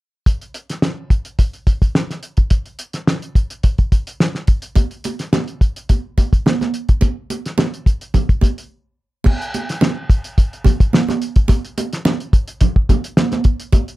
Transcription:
0.26 kick, closed hi-hat
0.41 closed hi-hat
0.54 closed hi-hat
0.70 snare, closed hi-hat
0.82 snare
1.10 kick, closed hi-hat
1.25 closed hi-hat
1.39 kick, closed hi-hat
1.53 closed hi-hat
1.67 kick, closed hi-hat
1.82 kick, closed hi-hat
1.95 snare
2.10 snare, closed hi-hat
2.23 closed hi-hat
2.37 kick, closed hi-hat
2.50 kick, closed hi-hat
2.66 closed hi-hat
2.79 closed hi-hat
2.93 snare, closed hi-hat
3.08 snare
3.22 closed hi-hat
3.35 kick, closed hi-hat
3.50 closed hi-hat
3.63 kick, closed hi-hat
3.78 kick, closed hi-hat
3.92 kick, closed hi-hat
4.07 closed hi-hat
4.20 snare
4.35 snare
4.47 kick, closed hi-hat
4.62 closed hi-hat
4.75 kick, closed hi-hat, muted conga
4.91 closed hi-hat
5.04 closed hi-hat, muted conga
5.19 snare, closed hi-hat
5.33 snare, high conga
5.48 closed hi-hat
5.61 kick, closed hi-hat
5.76 closed hi-hat
5.89 kick, closed hi-hat, muted conga
6.18 kick, closed hi-hat, muted conga
6.33 kick, closed hi-hat
6.46 snare, high conga
6.61 snare, closed hi-hat, high conga
6.74 closed hi-hat
6.89 kick, closed hi-hat
7.01 kick, closed hi-hat, muted conga
7.30 closed hi-hat, muted conga
7.46 snare, closed hi-hat
7.58 snare, high conga
7.74 closed hi-hat
7.86 kick, closed hi-hat
8.01 closed hi-hat
8.14 kick, closed hi-hat, muted conga, low conga
8.29 kick, closed hi-hat
8.41 kick, closed hi-hat, muted conga
8.58 closed hi-hat
9.24 kick, crash, muted conga
9.42 closed hi-hat
9.54 closed hi-hat, muted conga
9.69 snare, closed hi-hat
9.81 snare, high conga
10.10 kick, closed hi-hat
10.24 closed hi-hat
10.38 kick, closed hi-hat
10.53 closed hi-hat
10.64 kick, closed hi-hat, muted conga, low conga
10.80 kick, closed hi-hat
10.93 snare, high conga
11.09 snare, closed hi-hat, high conga
11.22 closed hi-hat
11.36 kick, closed hi-hat
11.48 kick, closed hi-hat, muted conga
11.65 closed hi-hat
11.78 closed hi-hat, muted conga
11.93 snare, closed hi-hat
12.05 snare, high conga
12.20 closed hi-hat
12.33 kick, closed hi-hat
12.48 closed hi-hat
12.61 kick, closed hi-hat, low conga
12.76 kick
12.89 kick, closed hi-hat, muted conga, low conga
13.04 closed hi-hat
13.17 snare, high conga
13.32 snare, closed hi-hat, high conga
13.44 kick, closed hi-hat
13.60 closed hi-hat
13.72 kick, closed hi-hat, muted conga
13.88 closed hi-hat

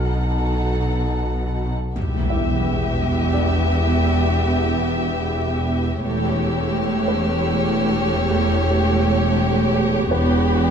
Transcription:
Already playing: B1 B2 D#4 A4 F#5 F6
1.94 E1 E2 B3 G4 E5, impact
2.29 E4 E5
3.33 D4 D5
6.05 E1 E2 A3 G4 C#5 E6
6.73 F6
7.08 B4
10.10 E1 E2 B3 G4 B4 B5

